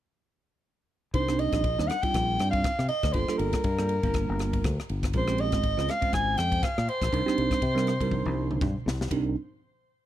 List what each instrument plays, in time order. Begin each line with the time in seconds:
1.14 fingered electric bass C2, tine electric piano G3 C4 D4 D#4 A#4, soprano saxophone C5, kick, ride
1.29 tine electric piano G3 C4 D4 D#4 A#4, cross-stick
1.39 soprano saxophone D#5, ride
1.52 fingered electric bass A#1, kick, cross-stick, ride
1.64 kick, ride
1.78 fingered electric bass D#2, tine electric piano G3 C4 D4 D#4 A#4, cross-stick
1.88 soprano saxophone F#5, cross-stick, ride
2.02 tine electric piano G3 C4 D4 D#4 F4, soprano saxophone G5, muted fingered electric bass stroke, kick, ride
2.14 fingered electric bass A#1, kick, cross-stick, ride
2.39 fingered electric bass G2, cross-stick, ride
2.51 soprano saxophone F5, kick, ride
2.64 kick, cross-stick, ride
2.79 fingered electric bass C3, cross-stick
2.88 soprano saxophone D#5, ride
3.03 fingered electric bass D2, kick, cross-stick, ride
3.13 fingered electric bass G1, tine electric piano G3 A#3 D4 F4 A4, soprano saxophone C5, kick, ride
3.28 tine electric piano G3 A#3 D4 F4 A4, cross-stick
3.38 fingered electric bass G1, soprano saxophone A#4, ride
3.53 kick, cross-stick, ride
3.64 fingered electric bass G2, kick, ride
3.79 tine electric piano G3 A#3 D4 F4 A4, cross-stick
3.89 ride
4.03 fingered electric bass G1, tine electric piano G3 A#3 D4 F4 A#4, kick, ride
4.14 kick, cross-stick, ride
4.29 fingered electric bass G1
4.39 cross-stick, ride
4.53 kick, ride
4.64 fingered electric bass D2, kick, cross-stick, ride
4.80 cross-stick
4.89 fingered electric bass G1, ride
5.03 kick, cross-stick, ride
5.13 fingered electric bass A#1, tine electric piano G#3 C4 C#4 F4 A#4, soprano saxophone C5, kick, ride
5.28 tine electric piano G#3 C4 C#4 F4 G4, cross-stick
5.38 soprano saxophone D#5, ride
5.52 fingered electric bass G#1, kick, cross-stick, ride
5.63 kick, ride
5.77 fingered electric bass C#2, tine electric piano G#3 C4 C#4 F4 C5, cross-stick
5.89 soprano saxophone F5, cross-stick, ride
6.01 tine electric piano G#3 C4 C#4 F4 C5, muted fingered electric bass stroke, kick, ride
6.13 fingered electric bass G#1, soprano saxophone G#5, kick, cross-stick, ride
6.37 fingered electric bass F2, soprano saxophone G5, cross-stick, ride
6.52 kick, ride
6.63 soprano saxophone F5, kick, cross-stick, ride
6.78 fingered electric bass A#2, cross-stick
6.88 soprano saxophone C5, ride
7.02 fingered electric bass A#1, kick, cross-stick, ride
7.12 fingered electric bass C2, tine electric piano G3 C4 D4 D#4 A#4, kick, ride
7.26 tine electric piano G3 C4 D4 D#4 G4, cross-stick
7.38 fingered electric bass C2, ride
7.51 kick, cross-stick, ride
7.62 fingered electric bass C3, kick, ride
7.75 tine electric piano G3 C4 D4 D#4 A#4, cross-stick
7.87 cross-stick, ride
8.01 fingered electric bass C2, tine electric piano G3 C4 D4 D#4 A#4, kick, ride
8.11 kick, high tom
8.26 fingered electric bass C2, high tom
8.51 mid tom
8.61 fingered electric bass G2, kick, mid tom
8.86 fingered electric bass C2, snare
9.01 snare
9.11 fingered electric bass C2, tine electric piano G3 C4 D4 D#4 A#4, kick, ride bell